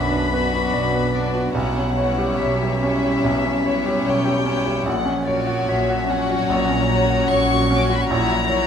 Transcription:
0.00 0.64 B1 soft
0.00 1.55 B1 soft
0.00 0.24 F#2 soft
0.00 0.63 B2 soft
0.00 1.51 F#3 soft
0.00 0.30 B3 soft
0.00 0.12 D4 soft
0.00 0.30 D4 soft
0.00 1.51 D4 soft
0.00 0.31 F#4 soft
0.00 0.53 F#4 soft
0.00 0.30 B4 soft
0.00 0.33 B4 soft
0.00 0.73 D5 soft
0.00 1.11 B5 medium
0.12 0.45 D4 soft
0.31 1.12 B3 soft
0.31 1.12 D4 soft
0.31 1.12 F#4 soft
0.31 1.12 B4 soft
0.31 0.66 B4 soft
0.53 0.86 F#4 soft
0.73 1.45 B1 soft
0.73 1.45 B2 soft
0.73 1.06 D5 soft
0.95 1.27 B4 soft
1.13 1.54 B3 soft
1.13 1.54 D4 soft
1.13 1.47 D4 soft
1.13 1.54 F#4 soft
1.13 1.54 B4 soft
1.13 1.55 D5 soft
1.35 1.55 F#4 soft
1.53 2.29 B1 soft
1.53 3.19 B1 soft
1.53 2.29 B2 soft
1.53 1.94 G3 soft
1.53 4.82 G3 soft
1.53 1.94 C#4 soft
1.53 4.83 C#4 soft
1.53 1.95 E4 soft
1.53 1.95 C#5 soft
1.53 2.38 F#5 medium
1.77 2.10 C#4 soft
1.95 2.79 G3 soft
1.95 2.79 C#4 soft
1.95 2.78 E4 soft
1.95 2.78 C#5 soft
1.95 2.31 C#5 soft
2.18 2.52 G4 soft
2.38 3.13 B1 soft
2.38 3.13 B2 soft
2.38 2.74 C#5 soft
2.38 4.05 E5 medium
2.62 2.95 G4 soft
2.79 3.62 G3 soft
2.79 3.62 C#4 soft
2.79 3.16 C#4 soft
2.79 3.62 E4 soft
2.79 3.62 C#5 soft
3.04 3.36 G4 soft
3.22 3.95 B1 soft
3.22 4.83 B1 soft
3.22 3.96 B2 soft
3.45 3.77 C#4 soft
3.63 4.44 G3 soft
3.63 4.44 C#4 soft
3.63 4.44 E4 soft
3.63 4.44 C#5 soft
3.63 3.98 C#5 soft
3.86 4.18 G4 soft
4.04 4.77 B1 soft
4.04 4.77 B2 soft
4.04 4.39 C#5 soft
4.04 4.86 G5 medium
4.25 4.58 G4 soft
4.45 4.85 G3 soft
4.45 4.85 C#4 soft
4.45 4.78 C#4 soft
4.45 4.86 E4 soft
4.45 4.85 C#5 soft
4.66 4.86 G4 soft
4.86 6.45 A#1 soft
4.86 5.58 A#1 medium
4.86 5.58 A#2 medium
4.86 7.94 F#3 medium
4.86 7.94 C#4 medium
4.86 5.26 F#5 medium
5.05 5.39 C#4 soft
5.26 6.07 F#3 soft
5.26 6.07 C#4 soft
5.26 6.07 F#4 soft
5.26 6.07 C#5 soft
5.26 5.60 C#5 soft
5.26 5.67 D5 medium
5.47 5.80 F#4 soft
5.67 6.39 A#1 soft
5.67 6.40 A#2 soft
5.67 6.01 C#5 soft
5.67 6.09 E5 soft
5.90 6.22 F#4 soft
6.08 6.88 F#3 soft
6.08 6.88 C#4 soft
6.08 6.42 C#4 soft
6.08 6.88 F#4 soft
6.08 6.88 C#5 soft
6.08 6.49 F#5 medium
6.31 6.62 F#4 soft
6.49 7.21 A#1 medium
6.49 8.06 A#1 soft
6.49 7.21 A#2 medium
6.49 7.30 A#5 medium
6.69 7.02 C#4 soft
6.89 7.68 F#3 soft
6.89 7.68 C#4 soft
6.89 7.69 F#4 soft
6.89 7.22 C#5 soft
6.89 7.69 C#5 soft
7.10 7.43 F#4 soft
7.29 8.01 A#1 medium
7.29 8.00 A#2 soft
7.29 7.63 C#5 soft
7.29 7.75 C#6 medium
7.52 7.83 F#4 soft
7.69 8.08 F#3 soft
7.69 8.09 C#4 soft
7.69 8.02 C#4 soft
7.69 8.09 F#4 soft
7.69 8.09 C#5 soft
7.76 7.84 D6 medium
7.83 7.92 C#6 medium
7.90 8.10 F#4 soft
7.90 8.01 B5 medium
8.00 8.09 C#6 medium
8.09 8.67 A#1 medium
8.09 8.67 A#2 medium
8.09 8.48 F#3 soft
8.09 8.67 F#3 medium
8.09 8.48 E4 soft
8.09 8.67 E4 medium
8.09 8.48 F#4 soft
8.09 8.48 C#5 soft
8.09 8.67 A#5 medium
8.30 8.61 E4 soft
8.48 8.67 F#3 soft
8.48 8.67 E4 soft
8.48 8.67 F#4 soft
8.48 8.67 C#5 soft

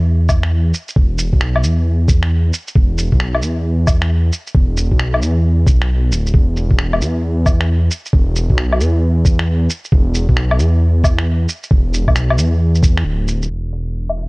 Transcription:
0.00 0.73 E2 medium
0.29 kick loud
0.29 low woodblock medium
0.29 shaker medium
0.43 finger snap loud
0.74 shaker medium
0.88 shaker soft
0.96 1.31 E1 medium
0.96 kick loud
1.18 shaker medium
1.33 1.65 B1 medium
1.33 kick medium
1.41 finger snap loud
1.56 low woodblock medium
1.63 2.52 E2 medium
1.63 shaker medium
2.08 kick loud
2.08 shaker medium
2.23 finger snap loud
2.53 shaker medium
2.68 shaker soft
2.76 3.11 E1 loud
2.76 kick loud
2.98 shaker medium
3.12 3.44 B1 medium
3.12 kick medium
3.20 finger snap loud
3.35 low woodblock medium
3.42 4.31 E2 medium
3.42 shaker medium
3.87 kick loud
3.87 low woodblock medium
3.87 shaker medium
4.02 finger snap loud
4.32 shaker medium
4.47 shaker soft
4.55 4.90 E1 loud
4.55 kick loud
4.77 shaker medium
4.91 5.23 B1 medium
4.91 kick medium
5.00 finger snap loud
5.14 low woodblock medium
5.22 5.68 E2 medium
5.22 shaker medium
5.67 6.13 B1 medium
5.67 kick loud
5.67 shaker medium
5.82 finger snap loud
6.11 6.32 D1 medium
6.11 shaker medium
6.26 shaker soft
6.34 7.02 E1 medium
6.34 kick loud
6.57 shaker soft
6.71 kick medium
6.79 finger snap loud
6.93 low woodblock medium
7.01 7.89 E2 medium
7.01 shaker soft
7.46 kick loud
7.46 low woodblock medium
7.46 shaker soft
7.61 finger snap loud
7.91 shaker soft
8.05 shaker soft
8.13 8.48 E1 loud
8.13 kick loud
8.36 shaker soft
8.50 8.81 B1 medium
8.50 kick medium
8.58 finger snap loud
8.72 low woodblock medium
8.80 9.69 E2 medium
8.80 shaker soft
9.25 kick medium
9.25 shaker soft
9.39 finger snap loud
9.70 shaker medium
9.84 shaker soft
9.92 10.27 E1 loud
9.92 kick loud
10.14 shaker medium
10.29 10.60 B1 medium
10.29 kick medium
10.37 finger snap medium
10.51 low woodblock medium
10.59 11.47 E2 medium
10.59 shaker soft
11.04 kick loud
11.04 low woodblock medium
11.04 shaker medium
11.19 finger snap loud
11.49 shaker medium
11.63 shaker soft
11.71 12.06 E1 loud
11.71 kick loud
11.94 shaker medium
12.08 12.39 B1 medium
12.08 kick medium
12.08 low woodblock soft
12.16 finger snap loud
12.16 shaker soft
12.30 low woodblock medium
12.37 13.04 E2 medium
12.37 shaker medium
12.75 shaker soft
12.83 kick loud
12.83 shaker medium
12.97 finger snap loud
13.04 13.49 D1 medium
13.28 shaker medium
13.42 shaker soft
13.50 14.29 E1 medium
13.73 open hi-hat medium
14.09 low woodblock medium
14.17 open hi-hat medium

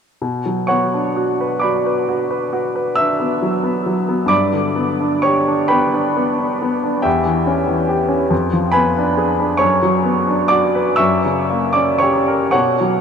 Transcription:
0.22 4.27 B2 soft
0.46 0.83 F#3 soft
0.67 1.07 B3 soft
0.67 1.58 C#5 soft
0.67 1.58 F#5 soft
0.67 1.61 C#6 medium
0.94 1.30 D4 soft
1.16 1.53 F#4 soft
1.41 1.77 B4 soft
1.59 2.94 D5 soft
1.59 2.94 B5 soft
1.59 2.97 D6 soft
1.63 2.00 F#4 soft
1.86 2.22 B4 soft
2.09 2.45 F#4 soft
2.31 2.67 B4 soft
2.53 2.89 F#4 soft
2.75 3.11 B4 soft
2.95 3.34 D4 soft
2.95 4.26 E5 soft
2.95 4.30 E6 medium
3.20 3.55 B3 soft
3.42 3.77 F#3 soft
3.63 3.99 B3 soft
3.86 4.22 F#3 soft
4.09 4.31 B3 soft
4.26 6.99 G2 soft
4.26 5.18 D5 soft
4.26 5.18 B5 soft
4.26 5.22 D6 medium
4.53 4.90 D3 soft
4.76 5.14 B3 soft
5.00 5.38 D4 soft
5.22 5.62 G4 soft
5.22 5.67 C#5 soft
5.22 5.70 C#6 medium
5.48 5.85 D4 soft
5.68 6.08 B3 soft
5.68 7.01 B4 soft
5.68 7.01 G5 soft
5.68 7.04 B5 medium
5.94 6.31 D4 soft
6.17 6.53 B3 soft
6.39 6.75 D4 soft
6.62 6.97 B3 soft
6.84 7.05 D4 soft
7.02 8.27 E2 soft
7.02 7.87 G4 soft
7.02 8.26 E5 soft
7.02 8.30 G5 medium
7.26 7.59 E3 soft
7.47 7.80 C#4 soft
7.67 8.01 E3 soft
7.89 8.23 G4 soft
8.09 8.31 C#4 soft
8.30 9.56 F2 soft
8.53 8.88 F3 soft
8.72 9.10 B3 soft
8.72 9.56 B4 soft
8.72 9.55 G#5 soft
8.72 9.59 B5 medium
8.97 9.31 D4 soft
9.17 9.52 G#4 soft
9.40 9.61 D4 soft
9.57 10.95 F#2 soft
9.57 10.45 C#5 medium
9.57 10.48 C#6 medium
9.82 10.18 F#3 soft
10.04 10.40 B3 soft
10.27 10.65 D4 soft
10.48 10.89 F#4 soft
10.48 10.95 D5 medium
10.48 10.98 D6 medium
10.75 10.99 B4 soft
10.96 12.49 F#2 soft
10.96 11.70 E5 soft
10.96 11.70 C#6 medium
10.96 11.74 E6 medium
11.25 11.65 C#3 soft
11.49 11.90 A#3 soft
11.73 12.17 C#4 soft
11.73 11.98 D5 soft
11.73 12.00 D6 medium
11.98 12.43 G4 soft
11.98 12.49 C#5 soft
11.98 12.50 C#6 medium
12.28 12.54 A#4 soft
12.51 13.01 B2 soft
12.51 13.01 C#5 soft
12.51 13.01 F#5 soft
12.51 13.01 C#6 medium
12.80 13.01 F#3 soft

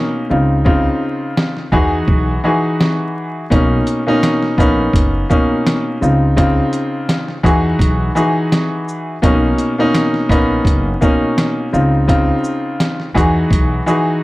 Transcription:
0.00 0.25 B2 medium
0.00 0.25 A#3 medium
0.00 0.25 C#4 medium
0.00 0.25 D#4 loud
0.29 0.86 C#2 loud
0.29 0.63 C#3 medium
0.29 0.63 C4 medium
0.29 0.63 D#4 medium
0.29 0.64 F4 medium
0.65 1.65 C#3 medium
0.65 1.65 C4 medium
0.65 1.65 D#4 medium
0.65 1.65 F4 loud
0.65 kick loud
1.37 snare loud
1.57 snare soft
1.72 2.01 E2 loud
1.72 2.39 E3 medium
1.72 2.39 D#4 medium
1.72 2.39 F#4 medium
1.72 2.40 G#4 loud
1.72 kick medium
2.08 2.36 B1 loud
2.08 kick loud
2.44 3.43 E3 medium
2.44 3.44 D#4 medium
2.44 3.44 F#4 medium
2.44 3.44 G#4 medium
2.81 snare loud
3.50 3.80 B1 loud
3.50 4.01 B2 loud
3.50 4.02 A#3 medium
3.50 4.02 C#4 medium
3.50 4.02 D#4 loud
3.50 kick loud
3.50 closed hi-hat medium
3.87 closed hi-hat soft
3.87 shaker medium
4.06 4.55 B2 medium
4.06 4.55 A#3 medium
4.06 4.55 C#4 medium
4.06 4.55 D#4 loud
4.23 snare loud
4.23 closed hi-hat medium
4.42 snare soft
4.58 4.86 A#1 medium
4.58 5.25 A#3 medium
4.58 5.24 B3 medium
4.58 5.25 C#4 medium
4.58 5.25 D#4 loud
4.58 kick medium
4.58 closed hi-hat soft
4.58 shaker soft
4.93 5.22 F#1 medium
4.93 kick loud
4.93 closed hi-hat loud
5.29 5.96 B2 medium
5.29 5.96 A#3 medium
5.29 5.96 C#4 medium
5.29 5.97 D#4 loud
5.29 kick medium
5.29 shaker medium
5.67 snare loud
5.67 closed hi-hat medium
6.01 6.58 C#2 loud
6.01 6.34 C#3 medium
6.01 6.35 C4 medium
6.01 6.35 D#4 medium
6.01 6.35 F4 medium
6.01 shaker medium
6.36 7.36 C#3 loud
6.36 7.36 C4 medium
6.36 7.37 D#4 medium
6.36 7.37 F4 loud
6.36 kick loud
6.36 closed hi-hat medium
6.73 closed hi-hat soft
6.73 shaker soft
7.09 snare loud
7.09 closed hi-hat medium
7.28 snare soft
7.43 7.72 E2 loud
7.43 8.10 E3 loud
7.43 8.10 D#4 medium
7.43 8.11 F#4 medium
7.43 8.11 G#4 loud
7.43 kick loud
7.43 closed hi-hat soft
7.43 shaker soft
7.79 8.08 B1 loud
7.79 kick loud
7.79 closed hi-hat loud
8.15 9.15 E3 medium
8.15 9.15 D#4 medium
8.15 9.15 F#4 medium
8.15 9.16 G#4 loud
8.15 shaker medium
8.52 snare loud
8.52 closed hi-hat medium
8.88 shaker medium
9.22 9.51 B1 loud
9.22 9.73 B2 loud
9.22 9.73 A#3 medium
9.22 9.74 C#4 medium
9.22 9.74 D#4 loud
9.22 kick loud
9.22 closed hi-hat loud
9.58 closed hi-hat soft
9.58 shaker soft
9.78 10.26 B2 medium
9.78 10.26 A#3 medium
9.78 10.27 C#4 medium
9.78 10.27 D#4 loud
9.94 snare loud
9.94 closed hi-hat medium
10.14 snare soft
10.29 10.58 A#1 loud
10.29 10.96 A#3 medium
10.29 10.96 B3 loud
10.29 10.96 C#4 medium
10.29 10.97 D#4 loud
10.29 kick medium
10.29 closed hi-hat medium
10.29 shaker medium
10.65 10.93 F#1 medium
10.65 kick loud
10.65 closed hi-hat medium
11.01 11.67 B2 medium
11.01 11.68 A#3 medium
11.01 11.68 C#4 medium
11.01 11.68 D#4 loud
11.01 kick medium
11.01 shaker medium
11.38 snare loud
11.38 closed hi-hat medium
11.72 12.29 C#2 loud
11.72 12.06 C#3 medium
11.72 12.06 C4 medium
11.72 12.06 D#4 medium
11.72 12.07 F4 medium
11.72 shaker medium
12.08 13.08 C#3 medium
12.08 13.08 C4 medium
12.08 13.08 D#4 medium
12.08 13.08 F4 loud
12.08 kick loud
12.08 closed hi-hat medium
12.44 shaker medium
12.80 snare loud
12.80 closed hi-hat medium
13.00 snare soft
13.14 13.44 E2 loud
13.14 13.81 E3 loud
13.14 13.82 D#4 medium
13.14 13.82 F#4 medium
13.14 13.82 G#4 loud
13.14 kick medium
13.14 closed hi-hat soft
13.14 shaker soft
13.51 13.79 B1 loud
13.51 kick loud
13.51 closed hi-hat medium
13.86 14.23 E3 medium
13.86 14.23 D#4 medium
13.86 14.23 F#4 medium
13.86 14.23 G#4 loud
13.86 shaker medium

